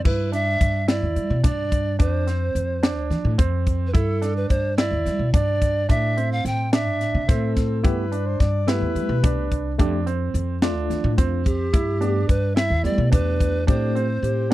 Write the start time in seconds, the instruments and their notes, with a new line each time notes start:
0.05 upright bass G2, grand piano E4, pan flute B4, kick, crash
0.32 grand piano D4, pan flute E5, closed hi-hat
0.61 upright bass G2, kick, closed hi-hat
0.88 grand piano E4, pan flute D5, snare, closed hi-hat
1.02 upright bass E2
1.16 upright bass G3, closed hi-hat
1.30 upright bass B2
1.44 upright bass G2, grand piano D4, pan flute D5, kick, closed hi-hat
1.72 kick, closed hi-hat
1.99 upright bass F2, grand piano D4, pan flute C5, kick, closed hi-hat
2.27 grand piano C4, snare, closed hi-hat
2.55 upright bass F2, closed hi-hat
2.83 grand piano D4, snare, closed hi-hat
2.97 upright bass D2
3.10 upright bass F3, snare, closed hi-hat
3.25 upright bass A2
3.38 upright bass F2, grand piano C4, kick, closed hi-hat
3.67 kick, closed hi-hat
3.87 pan flute B4
3.93 upright bass G2, grand piano E4, pan flute A4, kick, closed hi-hat
4.22 grand piano D4, snare, closed hi-hat
4.36 pan flute B4
4.49 upright bass G2, pan flute C5, kick, closed hi-hat
4.77 grand piano E4, pan flute D5, snare, closed hi-hat
4.91 upright bass E2
5.06 upright bass G3, snare, closed hi-hat
5.19 upright bass B2
5.33 upright bass G2, grand piano D4, pan flute D5, kick, closed hi-hat
5.62 kick, closed hi-hat
5.89 upright bass A2, grand piano D4, pan flute E5, kick, closed hi-hat
6.17 grand piano C4, closed hi-hat
6.32 pan flute F5
6.45 upright bass A2, pan flute G5, closed hi-hat
6.73 grand piano D4, pan flute E5, snare, closed hi-hat
6.87 upright bass G2
7.01 upright bass A2, snare, closed hi-hat
7.14 upright bass C3
7.28 upright bass A2, grand piano C4, alto saxophone A4, kick, snare, closed hi-hat
7.57 kick, snare, closed hi-hat
7.83 upright bass G2, tine electric piano A3 B3 G4, grand piano E4, alto saxophone B4, kick, closed hi-hat
8.12 grand piano D4, closed hi-hat
8.26 alto saxophone C5
8.40 upright bass G2, alto saxophone D5, kick, snare, closed hi-hat
8.67 tine electric piano A3 B3 G4, grand piano E4, alto saxophone B4, snare, closed hi-hat
8.81 upright bass E2
8.95 upright bass G3, closed hi-hat
9.09 upright bass B2
9.23 upright bass C2, grand piano D4, kick, closed hi-hat
9.52 kick, closed hi-hat
9.78 upright bass F2, tine electric piano A3 D4 G4, grand piano D4, kick, closed hi-hat
10.06 grand piano C4, closed hi-hat
10.34 upright bass F2, closed hi-hat
10.62 tine electric piano A3 D4 F4, grand piano D4, snare, closed hi-hat
10.76 upright bass D2
10.90 upright bass F3, snare, closed hi-hat
11.04 upright bass A2
11.18 upright bass F2, grand piano C4, kick, closed hi-hat
11.45 pan flute G4, kick, closed hi-hat
11.73 upright bass G2, grand piano E4, kick, closed hi-hat
12.00 tine electric piano A3 B3 G4, grand piano D4, closed hi-hat
12.29 upright bass G2, pan flute B4, kick, closed hi-hat
12.56 grand piano E4, pan flute E5, snare, closed hi-hat
12.70 upright bass E2
12.84 upright bass G3, tine electric piano A3 B3 G4, pan flute D5, closed hi-hat
12.98 upright bass B2
13.12 upright bass E2, grand piano D4, pan flute B4, kick, closed hi-hat
13.40 kick, closed hi-hat
13.67 upright bass A2, tine electric piano A3 C4 G4, grand piano D4, pan flute C5, kick, closed hi-hat
13.95 grand piano C4, closed hi-hat
14.23 upright bass A2, alto saxophone G4, closed hi-hat
14.50 tine electric piano B3, grand piano D4